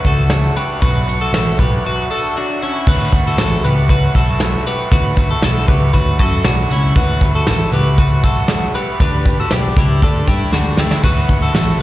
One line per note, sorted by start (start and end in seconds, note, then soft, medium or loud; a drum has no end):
0.03 0.49 C#2 loud
0.03 0.29 A3 medium
0.03 0.31 D4 medium
0.03 0.30 F#4 medium
0.03 0.54 A4 medium
0.03 kick medium
0.03 closed hi-hat medium
0.30 0.56 F#3 medium
0.30 0.56 A3 medium
0.30 0.55 D4 medium
0.30 0.54 F#4 medium
0.30 snare loud
0.30 closed hi-hat loud
0.56 0.80 A3 soft
0.56 0.80 D4 medium
0.56 0.81 F#4 medium
0.56 0.82 G4 medium
0.56 0.81 B4 medium
0.56 closed hi-hat medium
0.80 1.26 B1 loud
0.80 1.07 B2 medium
0.80 1.07 F#3 medium
0.80 1.07 A3 medium
0.80 1.07 D4 medium
0.80 1.06 F#4 medium
0.80 1.18 B4 loud
0.80 kick loud
0.80 closed hi-hat medium
1.07 1.33 A3 medium
1.07 1.33 D4 medium
1.07 1.33 F#4 medium
1.07 closed hi-hat medium
1.21 1.34 F#4 medium
1.21 1.33 A4 medium
1.33 1.55 A1 medium
1.33 1.59 F#3 medium
1.33 1.59 A3 medium
1.33 1.59 D4 medium
1.33 1.57 F#4 medium
1.33 1.59 A4 medium
1.33 snare loud
1.33 closed hi-hat medium
1.58 1.81 B1 medium
1.58 1.83 A3 soft
1.58 1.84 D4 medium
1.58 1.84 F#4 medium
1.58 1.85 G4 medium
1.58 1.85 B4 medium
1.58 kick medium
1.58 closed hi-hat medium
1.84 2.10 B2 medium
1.84 2.10 F#3 medium
1.84 2.10 A3 loud
1.84 2.09 D4 medium
1.84 2.08 F#4 loud
1.84 2.11 B4 medium
2.09 2.35 A3 medium
2.09 2.35 D4 medium
2.09 2.35 F#4 medium
2.09 2.36 A4 medium
2.35 2.61 F#3 medium
2.35 2.61 A3 medium
2.35 2.60 D4 medium
2.35 2.59 F#4 medium
2.61 2.86 A3 medium
2.61 2.88 C#4 medium
2.61 2.87 D4 medium
2.61 2.88 E4 medium
2.61 2.86 F#4 medium
2.87 3.09 D2 loud
2.87 3.13 D3 medium
2.87 3.13 F#3 loud
2.87 3.13 A3 medium
2.87 3.12 F#4 medium
2.87 3.11 B4 medium
2.87 kick loud
2.87 crash loud
3.12 3.34 D2 loud
3.12 3.36 A3 medium
3.12 3.37 F#4 medium
3.12 3.37 B4 medium
3.12 kick medium
3.12 closed hi-hat medium
3.27 3.39 F#4 medium
3.27 3.38 A4 medium
3.37 3.60 A1 medium
3.37 3.63 D3 medium
3.37 3.63 F#3 medium
3.37 3.63 A3 medium
3.37 3.62 F#4 medium
3.37 3.64 A4 medium
3.37 3.62 B4 medium
3.37 snare loud
3.37 closed hi-hat medium
3.63 4.07 C#2 medium
3.63 3.87 A3 soft
3.63 3.88 F#4 soft
3.63 3.90 G4 medium
3.63 3.88 B4 medium
3.63 closed hi-hat medium
3.88 4.14 F#3 medium
3.88 4.14 A3 medium
3.88 4.14 F#4 medium
3.88 4.13 B4 medium
3.88 kick loud
3.88 closed hi-hat loud
4.14 4.58 B1 medium
4.14 4.40 A3 medium
4.14 4.41 F#4 medium
4.14 4.63 A4 medium
4.14 4.40 B4 medium
4.14 kick medium
4.14 closed hi-hat medium
4.40 4.66 D3 medium
4.40 4.67 F#3 medium
4.40 4.66 A3 medium
4.40 4.66 F#4 medium
4.40 4.65 B4 loud
4.40 snare loud
4.40 closed hi-hat loud
4.66 4.90 A3 soft
4.66 4.90 F#4 medium
4.66 4.92 G4 medium
4.66 4.90 B4 medium
4.66 closed hi-hat medium
4.90 5.35 D2 loud
4.90 5.16 D3 medium
4.90 5.16 F#3 loud
4.90 5.15 A3 medium
4.90 5.15 F#4 medium
4.90 5.13 B4 medium
4.90 kick loud
4.90 closed hi-hat loud
5.15 5.41 A3 soft
5.15 5.42 F#4 medium
5.15 5.41 B4 medium
5.15 kick loud
5.15 closed hi-hat medium
5.31 5.43 F#4 medium
5.31 5.42 A4 medium
5.41 5.65 B1 medium
5.41 5.68 D3 medium
5.41 5.68 F#3 medium
5.41 5.67 A3 medium
5.41 5.66 F#4 medium
5.41 5.68 A4 medium
5.41 5.65 B4 medium
5.41 snare loud
5.41 closed hi-hat medium
5.66 5.90 C#2 medium
5.66 5.91 A3 soft
5.66 5.92 F#4 medium
5.66 5.94 G4 medium
5.66 5.92 B4 medium
5.66 kick medium
5.66 closed hi-hat medium
5.92 6.20 D2 loud
5.92 6.18 F#3 medium
5.92 6.18 A3 medium
5.92 6.18 F#4 medium
5.92 6.17 B4 medium
5.92 kick medium
5.92 closed hi-hat loud
6.18 6.41 F#2 loud
6.18 6.44 A3 medium
6.18 6.43 F#4 medium
6.18 6.45 A4 medium
6.18 6.44 B4 medium
6.18 kick medium
6.18 closed hi-hat medium
6.44 6.66 B1 medium
6.44 6.70 D3 medium
6.44 6.70 F#3 medium
6.44 6.70 A3 medium
6.44 6.71 D4 medium
6.44 6.69 F#4 medium
6.44 6.68 B4 loud
6.44 snare loud
6.44 closed hi-hat loud
6.70 6.92 C#2 medium
6.70 6.95 A3 soft
6.70 6.97 C#4 medium
6.70 6.96 E4 medium
6.70 6.95 F#4 medium
6.70 6.95 B4 medium
6.70 closed hi-hat medium
6.95 7.18 D2 loud
6.95 7.21 D3 medium
6.95 7.21 F#3 loud
6.95 7.21 A3 medium
6.95 7.21 F#4 medium
6.95 7.20 B4 loud
6.95 kick loud
6.95 closed hi-hat medium
7.21 7.43 D2 loud
7.21 7.46 A3 medium
7.21 7.46 F#4 medium
7.21 7.47 B4 medium
7.21 kick medium
7.21 closed hi-hat medium
7.35 7.47 F#4 medium
7.35 7.46 A4 medium
7.47 7.69 A1 medium
7.47 7.72 D3 medium
7.47 7.73 F#3 medium
7.47 7.72 A3 medium
7.47 7.72 F#4 medium
7.47 7.73 A4 medium
7.47 7.71 B4 loud
7.47 snare loud
7.47 closed hi-hat medium
7.72 8.24 C#2 medium
7.72 7.97 A3 medium
7.72 7.98 F#4 medium
7.72 7.99 G4 medium
7.72 7.98 B4 medium
7.72 closed hi-hat medium
7.98 8.23 F#3 medium
7.98 8.24 A3 medium
7.98 8.23 F#4 medium
7.98 8.22 B4 medium
7.98 kick medium
7.98 closed hi-hat loud
8.23 8.67 B1 medium
8.23 8.49 A3 medium
8.23 8.49 F#4 medium
8.23 8.72 A4 medium
8.23 8.49 B4 medium
8.23 kick medium
8.23 closed hi-hat medium
8.48 8.75 D3 medium
8.48 8.75 F#3 medium
8.48 8.75 A3 medium
8.48 8.74 F#4 medium
8.48 8.73 B4 medium
8.48 snare loud
8.48 closed hi-hat loud
8.74 9.00 A3 soft
8.74 9.00 F#4 medium
8.74 9.01 G4 medium
8.74 9.00 B4 medium
8.74 closed hi-hat medium
8.99 9.43 D2 loud
8.99 9.25 D3 medium
8.99 9.26 G3 medium
8.99 9.26 D4 medium
8.99 9.25 G4 medium
8.99 9.24 B4 loud
8.99 kick loud
8.99 closed hi-hat medium
9.25 9.50 D4 medium
9.25 9.50 G4 medium
9.25 9.51 B4 medium
9.25 kick loud
9.25 closed hi-hat medium
9.40 9.52 F#4 medium
9.40 9.52 A4 medium
9.50 9.73 B1 medium
9.50 9.76 D3 medium
9.50 9.76 G3 medium
9.50 9.77 D4 medium
9.50 9.76 G4 medium
9.50 9.75 B4 medium
9.50 snare loud
9.50 closed hi-hat medium
9.76 9.98 C#2 medium
9.76 10.01 D4 soft
9.76 10.03 E4 medium
9.76 10.01 G4 soft
9.76 10.02 B4 medium
9.76 kick loud
9.76 closed hi-hat medium
10.01 10.24 D2 loud
10.01 10.27 G3 medium
10.01 10.27 D4 medium
10.01 10.26 G4 medium
10.01 10.28 A4 medium
10.01 10.25 B4 medium
10.01 kick medium
10.01 closed hi-hat loud
10.26 10.49 G2 medium
10.26 10.51 D4 medium
10.26 10.54 E4 medium
10.26 10.51 G4 medium
10.26 10.51 B4 medium
10.26 kick medium
10.26 closed hi-hat medium
10.51 10.74 D2 medium
10.51 10.78 D3 medium
10.51 10.77 G3 medium
10.51 10.77 D4 medium
10.51 10.79 F#4 medium
10.51 10.77 G4 medium
10.51 10.76 B4 medium
10.51 snare medium
10.77 11.00 D2 medium
10.77 11.02 D4 soft
10.77 11.03 E4 medium
10.77 11.02 G4 medium
10.77 11.02 B4 medium
10.77 snare loud
10.91 snare medium
11.02 11.25 D2 loud
11.02 11.29 D3 medium
11.02 11.28 F#3 medium
11.02 11.29 A3 medium
11.02 11.27 F#4 medium
11.02 11.27 B4 loud
11.02 kick loud
11.02 crash medium
11.28 11.51 D2 medium
11.28 11.52 A3 soft
11.28 11.53 F#4 medium
11.28 11.53 B4 medium
11.28 kick loud
11.28 closed hi-hat medium
11.42 11.55 F#4 medium
11.42 11.54 A4 medium
11.53 11.76 A1 medium
11.53 11.79 D3 medium
11.53 11.80 F#3 medium
11.53 11.79 A3 medium
11.53 11.79 F#4 medium
11.53 11.80 A4 medium
11.53 11.78 B4 medium
11.53 snare loud
11.53 closed hi-hat medium
11.79 11.82 B4 medium